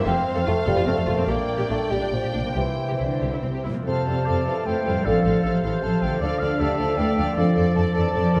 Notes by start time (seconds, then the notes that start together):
Already playing: F2 A3 C4 C5
0.02 F4 A4
0.06 F1 F2 C4 F5
0.35 F2 A4
0.46 F1 F2 A3 F4
0.66 F1 F2 G3 A4
0.77 F2 F4
0.86 F1 F2 A3 C4
0.97 F2 A4
1.07 F1 F2 A#2 F4
1.15 F2 G3 C4
1.20 D4
1.24 A#2 G4
1.28 A#1 A#3 D5 G5
1.58 A#2 G4
1.69 A#1 A#2 A3 D4
1.90 A#1 A#2 G3 G4
2.01 A#2 D4
2.11 A#1 A#2 F3 A#3
2.22 A#2 G4
2.33 A#1 A#2 D4
2.38 C3
2.43 A#2 G3 A#3
2.47 C4
2.52 G4
2.56 C2 C3 E3 C5
2.88 C3 G4
2.99 C2 D3 E4
3.22 C2 G4
3.32 E4
3.43 C2 C3 C4
3.55 G4
3.65 C2 F2 A#2 E4
3.74 F3 C4
3.78 C4
3.83 F2 C4 A4 C5
3.87 C3 F3 A4 C5 F5 A5
4.05 F2 G3 A4 C5 F5
4.25 F2 F3 A4 C5 D5 F5
4.45 F2 E3 A4 C5 F5
4.65 F2 A3 A4 C5 F5 G5
4.85 F2 A2 G3 A4 C5 F5
4.92 F3
4.96 C4
5.00 A4
5.05 A1 D3 F3 C4 A4 C5 D5 F5
5.23 A1 A4 C5 F5
5.43 A1 C3 A4 C5 F5
5.62 A1 E3 A4 C5 F5
5.82 A1 F3 A4 C5 F5 A5
6.02 A1 D3 A4 C5 F5 G5
6.08 F3
6.13 D4
6.17 D2 A4 D5 F5
6.21 D3 F3 D4 A4 F5
6.39 D2 A4 D5 F5
6.59 D2 G3 A4 D5 E5 F5 A5
6.78 D2 F3 A4 D5 F5
6.97 D2 E3 A3 A4 D5 F5 G5
7.17 D2 D3 F3 A4 D5 F5
7.23 A3
7.28 D4
7.32 A4 D5
7.36 F2 F3 D4 A4 D5 F5
7.54 F2 A4 D5
7.74 F2 F3 A4 D5 A5
7.93 F2 E3 A4 D5 A5
8.12 F2 F3 A4 D5
8.31 F2 D3 A4 A#4 D5